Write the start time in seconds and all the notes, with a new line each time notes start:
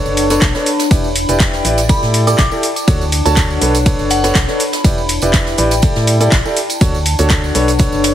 Already playing: D4 A4 B4 C#5 F#5 A5
0.05 F#1, closed hi-hat, tambourine
0.17 closed hi-hat, open hi-hat, shaker
0.24 B5
0.30 D4 A4 B4 C#5, snare, closed hi-hat, tambourine, shaker
0.41 B1, kick, snare, clap, closed hi-hat, ride, shaker
0.54 D4 A4 B4 C#5, snare, tambourine
0.66 closed hi-hat, open hi-hat, shaker
0.79 snare, closed hi-hat, tambourine, shaker
0.91 E1 E4 G4 B4 D5, kick, closed hi-hat, ride, tambourine, shaker
1.04 G5, tambourine
1.15 closed hi-hat, open hi-hat, shaker
1.29 E1 E4 G4 B4 D5, closed hi-hat, tambourine, shaker
1.36 D5
1.40 kick, snare, clap, closed hi-hat, ride, tambourine, shaker
1.53 snare, tambourine
1.65 A1 E4 G4 B4 D5, closed hi-hat, open hi-hat, shaker
1.78 snare, closed hi-hat, tambourine, shaker
1.89 E4 G4 A4 D5 B5, kick, closed hi-hat, ride, tambourine, shaker
2.02 A2, snare, tambourine
2.14 closed hi-hat, open hi-hat, shaker
2.27 E4 G4 A4 D5 D6, closed hi-hat, tambourine, shaker
2.34 A5
2.38 A1 D6, kick, snare, clap, closed hi-hat, ride, tambourine, shaker
2.52 E4 G4 A4 D5, tambourine
2.63 closed hi-hat, open hi-hat, shaker
2.76 closed hi-hat, tambourine, shaker
2.87 D2 D4 F#4 A4 C#5, kick, closed hi-hat, ride, tambourine, shaker
3.01 closed hi-hat, tambourine
3.12 closed hi-hat, open hi-hat, shaker
3.19 C#5 F#5
3.25 D2 D4 F#4 A4 C#5 A5, closed hi-hat, tambourine, shaker
3.36 kick, snare, clap, closed hi-hat, ride, tambourine, shaker
3.50 tambourine
3.61 B1 D4 A4 B4 C#5, closed hi-hat, open hi-hat, shaker
3.75 closed hi-hat, tambourine, shaker
3.86 D4 A4 B4 C#5, kick, closed hi-hat, ride, tambourine, shaker
3.99 F#1, closed hi-hat, tambourine
4.10 F#5, closed hi-hat, open hi-hat, shaker
4.17 B5
4.23 D4 A4 B4 C#5, snare, closed hi-hat, tambourine, shaker
4.35 B1, kick, snare, clap, closed hi-hat, ride, tambourine, shaker
4.48 D4 A4 B4 C#5, snare, tambourine
4.60 closed hi-hat, open hi-hat, shaker
4.73 snare, closed hi-hat, tambourine, shaker
4.84 E1 E4 G4 B4 D5, kick, closed hi-hat, ride, tambourine, shaker
4.98 D5, tambourine
5.08 closed hi-hat, open hi-hat, shaker
5.22 E1 E4 G4 B4 D5, closed hi-hat, tambourine, shaker
5.29 G5
5.33 kick, snare, clap, closed hi-hat, ride, tambourine, shaker
5.46 snare, tambourine
5.57 A1 E4 G4 B4 D5, closed hi-hat, open hi-hat, shaker
5.71 snare, closed hi-hat, tambourine, shaker
5.82 E4 G4 A4 D5, kick, closed hi-hat, ride, tambourine, shaker
5.96 A2, snare, tambourine
6.07 closed hi-hat, open hi-hat, shaker
6.21 E4 G4 A4 D5, closed hi-hat, tambourine, shaker
6.27 A5
6.31 A1, kick, snare, clap, closed hi-hat, ride, tambourine, shaker
6.45 E4 G4 A4 D5, tambourine
6.57 closed hi-hat, open hi-hat, shaker
6.70 closed hi-hat, tambourine, shaker
6.81 D2 D4 F#4 A4 C#5, kick, closed hi-hat, ride, tambourine, shaker
6.94 closed hi-hat, tambourine
7.06 C#5, closed hi-hat, open hi-hat, shaker
7.15 F#5, tambourine
7.19 D2 D4 F#4 A4 C#5, closed hi-hat, shaker
7.29 kick, snare, clap, closed hi-hat, ride, tambourine, shaker
7.44 tambourine
7.55 B1 D4 A4 B4 C#5, closed hi-hat, open hi-hat, shaker
7.68 closed hi-hat, tambourine, shaker
7.79 D4 A4 B4 C#5, kick, closed hi-hat, ride, tambourine, shaker
7.92 F#1, closed hi-hat, tambourine
8.03 snare, closed hi-hat, open hi-hat, shaker
8.11 B5